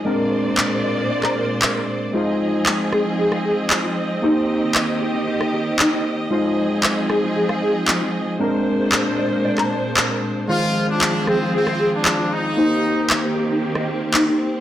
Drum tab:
CP |----x----x--x---|----x-------x---|----x-------x---|----x-------x---|
SD |---------r------|------r--r------|---------r------|------r--r------|

CP |----x----x--x---|----x-------x---|----x-------x---|
SD |---------r------|------r--r------|---------r------|